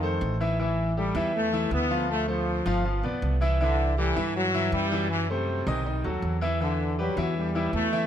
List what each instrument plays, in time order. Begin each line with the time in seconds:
Already playing: upright bass F2, trombone section D#3
0.03 grand piano A3 A4 C5
0.21 upright bass A1
0.40 grand piano E3 E4 E5
0.59 trombone section E3, grand piano E3 E4 E5
0.97 grand piano G3 G4 A4, trombone section G3
1.15 upright bass E2, grand piano E3 E4 E5
1.36 trombone section A3
1.53 grand piano E3 E4 E5
1.71 upright bass D2, trombone section B3
1.90 grand piano F3 F4 F5
2.11 trombone section A3
2.28 trombone section F3, grand piano A3 A4 C5
2.66 upright bass G1, grand piano F3 F4 F5
2.85 grand piano F3 F4 F5
3.03 upright bass B1, grand piano B3 B4 D5
3.22 upright bass C2
3.41 grand piano E3 E4 E5
3.61 trombone section D3, grand piano E3 E4 E5
3.98 trombone section E3, grand piano G3 G4 A4
4.16 upright bass G2, grand piano E3 E4 E5
4.36 trombone section F#3
4.54 grand piano E3 E4 E5
4.72 upright bass F#2, trombone section G3
4.92 grand piano E3 E4 E5
5.11 trombone section E3
5.30 trombone section C3, grand piano A3 A4 C5
5.67 upright bass B1, grand piano D#3 D#4 D#5
5.86 grand piano D#3 D#4 D#5
6.04 upright bass D#2, grand piano F#3 F#4 A4
6.22 upright bass E2
6.41 grand piano E3 E4 E5
6.61 trombone section D3, grand piano E3 E4 E5
6.99 trombone section F#3, grand piano G3 G4 B4
7.17 upright bass E2, grand piano E3 E4 E5
7.37 trombone section G3
7.55 grand piano E3 E4 E5
7.73 upright bass E2, trombone section A3
7.92 grand piano E3 E4 E5